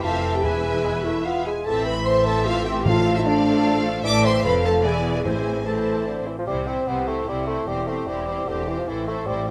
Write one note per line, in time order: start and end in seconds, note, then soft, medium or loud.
0.03 0.44 F1 medium
0.03 0.43 F2 medium
0.03 0.44 E3 medium
0.03 0.43 C4 medium
0.03 0.18 F4 medium
0.03 0.43 A4 medium
0.03 0.43 E5 medium
0.03 0.33 F5 medium
0.03 0.44 A5 medium
0.34 0.44 G4 medium
0.34 0.44 G5 medium
0.42 1.46 E1 medium
0.42 1.01 E2 medium
0.42 1.46 E2 medium
0.42 0.80 E3 soft
0.42 1.44 E4 medium
0.42 1.04 G#4 medium
0.42 1.46 B4 medium
0.42 1.44 E5 medium
0.42 1.05 G#5 medium
0.42 1.46 B5 medium
0.84 0.94 G#3 medium
1.04 1.25 A3 medium
1.04 1.25 E4 medium
1.04 1.25 E5 medium
1.24 1.46 B3 medium
1.24 1.45 F4 medium
1.24 1.46 F5 medium
1.45 1.66 G#3 soft
1.45 1.66 G#4 medium
1.45 1.66 G#5 medium
1.64 4.00 A1 medium
1.64 4.00 A2 medium
1.64 2.82 E3 medium
1.64 2.04 C4 medium
1.64 1.86 A4 medium
1.64 2.04 A4 medium
1.64 2.03 E5 medium
1.64 1.86 A5 medium
1.64 2.81 C6 medium
1.85 2.06 B4 medium
1.85 2.06 B5 medium
2.05 2.84 C4 medium
2.05 2.84 A4 medium
2.05 2.25 C5 medium
2.05 2.84 E5 medium
2.05 2.26 C6 medium
2.26 2.46 A4 medium
2.26 2.46 A5 medium
2.46 2.66 F4 loud
2.46 2.65 F5 medium
2.65 2.86 G4 medium
2.65 2.73 G5 medium
2.85 3.41 A2 medium
2.85 4.02 F3 medium
2.85 3.25 A3 medium
2.85 3.17 F4 medium
2.85 3.25 A4 medium
2.85 3.24 F5 medium
2.85 3.15 F5 medium
2.85 3.75 A5 medium
3.16 3.22 E4 medium
3.16 3.20 E5 medium
3.26 4.04 A3 medium
3.26 3.84 D4 medium
3.26 4.04 A4 medium
3.26 3.84 D5 medium
3.26 4.03 F5 medium
4.02 4.42 A1 medium
4.02 4.41 A2 medium
4.02 4.46 E3 medium
4.02 4.42 A3 medium
4.02 4.42 A4 medium
4.02 4.23 D5 loud
4.02 4.40 E5 medium
4.02 4.22 A5 medium
4.02 4.23 D6 loud
4.23 4.44 C5 medium
4.23 4.44 G5 medium
4.23 4.44 C6 medium
4.42 4.84 F1 medium
4.42 4.84 F2 medium
4.42 4.85 F3 medium
4.42 4.83 A3 medium
4.42 4.83 A4 medium
4.42 4.64 B4 medium
4.42 4.82 F5 medium
4.42 4.84 F5 medium
4.42 4.53 B5 medium
4.65 4.85 A4 medium
4.65 4.73 A5 medium
4.82 5.25 E1 medium
4.82 5.25 E2 medium
4.82 5.23 E3 medium
4.82 5.25 B3 medium
4.82 5.24 E4 medium
4.82 5.24 D5 medium
4.82 5.12 G#5 medium
4.86 5.15 G#4 medium
5.13 5.25 G#4 medium
5.13 5.22 G#5 soft
5.24 6.27 A1 medium
5.24 6.27 A2 medium
5.24 5.82 A2 medium
5.24 5.64 E3 soft
5.24 5.65 C4 soft
5.24 5.65 E4 soft
5.24 5.65 G#4 medium
5.24 5.62 C5 soft
5.24 5.63 C5 soft
5.24 5.64 G#5 medium
5.64 6.06 E3 soft
5.64 6.26 C4 soft
5.64 6.26 E4 soft
5.64 6.07 A4 medium
5.64 6.25 C5 soft
5.64 6.07 A5 soft
6.07 6.28 D3 medium
6.27 6.37 E3 soft
6.39 6.43 F3 medium
6.46 6.83 C2 soft
6.46 6.83 C3 medium
6.46 6.69 G3 medium
6.46 6.66 C4 soft
6.46 8.84 E4 soft
6.46 6.66 E4 soft
6.46 6.65 C5 soft
6.46 8.84 C5 soft
6.66 6.89 C4 medium
6.66 6.87 C4 soft
6.66 6.86 E4 soft
6.66 6.87 C5 soft
6.87 7.23 C2 soft
6.87 7.23 C3 soft
6.87 7.09 B3 medium
6.87 7.06 C4 soft
6.87 7.06 E4 soft
6.87 7.25 G4 soft
6.87 7.06 C5 soft
7.07 7.28 A3 medium
7.07 7.27 C4 soft
7.07 7.27 E4 soft
7.07 7.27 C5 soft
7.27 7.63 C2 medium
7.27 7.63 C3 soft
7.27 7.46 G3 medium
7.27 7.47 C4 soft
7.27 7.68 E4 soft
7.27 7.47 E4 soft
7.27 7.47 C5 soft
7.47 7.67 A3 medium
7.47 7.67 C4 soft
7.47 7.68 E4 soft
7.47 7.67 C5 soft
7.67 8.03 E1 soft
7.67 8.03 E2 soft
7.67 7.89 G3 medium
7.67 7.88 C4 soft
7.67 8.08 C4 soft
7.67 7.88 G4 soft
7.67 7.86 C5 soft
7.87 8.09 A3 medium
7.87 8.08 C4 soft
7.87 8.08 G4 soft
7.87 8.06 C5 soft
8.07 8.43 E1 soft
8.07 8.43 E2 soft
8.07 8.50 G3 medium
8.07 8.28 C4 soft
8.07 8.48 E4 soft
8.07 8.28 G4 soft
8.07 8.27 C5 soft
8.28 8.47 C4 soft
8.28 8.48 G4 soft
8.28 8.47 C5 soft
8.47 8.83 E1 medium
8.47 8.83 E2 medium
8.47 8.69 D3 medium
8.47 8.67 C4 soft
8.47 8.87 G4 medium
8.47 8.67 G4 soft
8.47 8.67 C5 soft
8.68 8.80 E3 medium
8.68 8.88 C4 soft
8.68 8.88 G4 soft
8.68 8.87 C5 soft
8.78 8.89 F3 medium
8.87 9.23 A1 soft
8.87 9.23 A2 medium
8.87 9.07 E3 medium
8.87 9.51 C4 soft
8.87 9.51 E4 medium
8.87 9.08 E4 soft
8.87 9.08 A4 soft
8.87 9.51 C5 soft
8.87 9.07 C5 soft
9.08 9.28 A3 medium
9.08 9.27 E4 soft
9.08 9.28 A4 soft
9.08 9.26 C5 soft
9.27 9.51 A1 soft
9.27 9.51 A2 medium
9.27 9.47 G3 medium
9.27 9.48 E4 soft
9.27 9.48 A4 soft
9.27 9.46 C5 soft
9.47 9.51 C5 soft